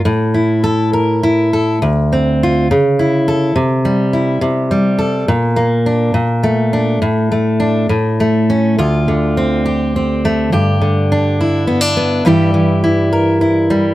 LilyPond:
\new Staff \with { instrumentName = "Steel-string acoustic guitar" } { \time 6/8 \key d \minor \tempo 4. = 69 << { r8 e'8 a'8 bes'8 e'8 a'8 | r8 c'8 f'8 r8 e'8 a'8 | r8 g8 e'8 r8 g8 a'8 | r8 bes8 d'8 r8 a8 d'8 |
r8 a8 d'8 r8 a8 cis'8 | f'4 c'8 g'8 c'8 a8 | g'4 d'8 e'8 b16 d'16 b8 | <e g e' g'>4 e'8 bes'8 e'8 g8 | } \\ { a,2. | d,4. cis4. | c4. c4. | bes,4. bes,4. |
a,4. a,4. | d,8 d2~ d8 | g,8 d2~ d8 | g,8 e2~ e8 | } >> }